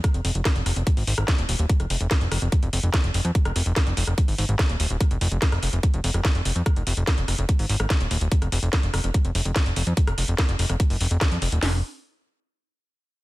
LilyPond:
<<
  \new Staff \with { instrumentName = "Analog synth bass" } { \clef bass \time 4/4 \key f \minor \tempo 4 = 145 r16 f,,16 f,,16 f,,16 r16 f,,16 f,,16 f,,16 r16 aes,,16 aes,,16 aes,,16 r16 ees,,16 ees,,16 ees,,16 | r16 f,,16 f,,16 f,,16 r16 f,,16 f,,16 f,,16 r16 f,,16 f,,16 f,,16 r16 f,,16 f,,16 f,16 | r16 f,,16 f,,16 f,,16 r16 f,,16 f,,16 f,,16 r16 aes,,16 aes,,16 aes,,16 r16 ees,,16 ees,,16 ees,,16 | r16 f,,16 f,,16 f,,16 r16 f,,16 f,,16 f,,16 r16 f,,16 f,,16 f,,16 r16 f,,16 f,,16 f,16 |
r16 f,,16 f,,16 f,,16 r16 f,,16 f,,16 f,,16 r16 aes,,16 aes,,16 aes,,16 r16 ees,,16 ees,,16 ees,,16 | r16 f,,16 f,,16 f,,16 r16 f,,16 f,,16 f,,16 r16 f,,16 f,,16 f,,16 r16 f,,16 f,,16 f,16 | r16 f,,16 f,,16 f,,16 r16 f,,16 f,,16 f,,16 r16 ges,,16 f,,16 f,,16 r16 f,16 f,,16 ees,,16 | f,,8 r2. r8 | }
  \new DrumStaff \with { instrumentName = "Drums" } \drummode { \time 4/4 <hh bd ss>16 hh16 hho16 hh16 <hh bd sn>16 hh16 <hho ss>16 hh16 <hh bd>16 hho16 hho16 <hh ss>16 <hh bd sn>16 hh16 hho16 hh16 | <hh bd>16 <hh ss>16 hho16 hh16 <hh bd sn>16 hh16 <hho ss>16 hh16 <hh bd>16 hh16 hho16 hh16 <hh bd ss sn>16 hh16 hho16 hh16 | <hh bd>16 <hh ss>16 hho16 hh16 <hh bd sn>16 hh16 hho16 <hh ss>16 <hh bd>16 hho16 hho16 hh16 <hh bd ss sn>16 hh16 hho16 hh16 | <hh bd ss>16 hh16 hho16 hh16 <hh bd sn>16 <hh ss>16 hho16 hh16 <hh bd>16 hh16 hho16 <hh ss>16 <hh bd sn>16 hh16 hho16 hh16 |
<hh bd ss>16 hh16 hho16 hh16 <hh bd sn>16 hh16 <hho ss>16 hh16 <hh bd>16 hho16 hho16 <hh ss>16 <hh bd sn>16 hh16 hho16 hh16 | <hh bd>16 <hh ss>16 hho16 hh16 <hh bd sn>16 hh16 <hho ss>16 hh16 <hh bd>16 hh16 hho16 hh16 <hh bd ss sn>16 hh16 hho16 hh16 | <hh bd>16 <hh ss>16 hho16 hh16 <hh bd sn>16 hh16 hho16 <hh ss>16 <hh bd>16 hho16 hho16 hh16 <hh bd ss sn>16 hh16 hho16 hh16 | <hho sn>4 r4 r4 r4 | }
>>